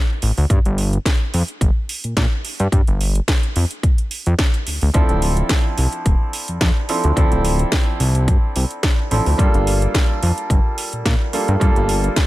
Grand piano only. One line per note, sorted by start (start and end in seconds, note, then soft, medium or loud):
4.94 6.86 F3 medium
4.94 6.86 C4 medium
4.94 6.86 D4 medium
4.94 6.86 E4 medium
4.94 6.87 A4 loud
6.89 7.14 F3 medium
6.89 7.14 C4 medium
6.89 7.14 D4 medium
6.89 7.14 E4 medium
6.89 7.14 A4 medium
7.16 9.08 F3 medium
7.16 9.08 C4 medium
7.16 9.08 D4 medium
7.16 9.09 E4 medium
7.16 9.09 A4 loud
9.11 9.36 F3 medium
9.11 9.36 C4 medium
9.11 9.36 D4 medium
9.11 9.36 E4 medium
9.11 9.36 A4 medium
9.38 11.30 G3 medium
9.38 11.30 A#3 medium
9.38 11.31 D4 medium
9.38 11.31 F4 medium
9.38 11.31 A4 loud
11.33 11.58 G3 medium
11.33 11.58 A#3 medium
11.33 11.58 D4 medium
11.33 11.58 F4 medium
11.33 11.59 A4 medium
11.60 12.27 G3 loud
11.60 12.27 A#3 medium
11.60 12.27 D4 medium
11.60 12.27 F4 medium
11.60 12.27 A4 loud